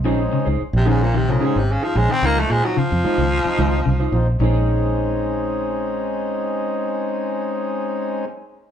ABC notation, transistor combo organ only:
X:1
M:4/4
L:1/16
Q:1/4=110
K:Bbm
V:1 name="Transistor combo organ"
[A,CDE]3 z3 [A,CDE]2 z [A,CDE]3 z2 [A,CDE] z | [F,CE]3 z3 [F,CE]2 z [F,CE]3 z2 [F,CE] z | [A,CDE]16- | [A,CDE]16 |]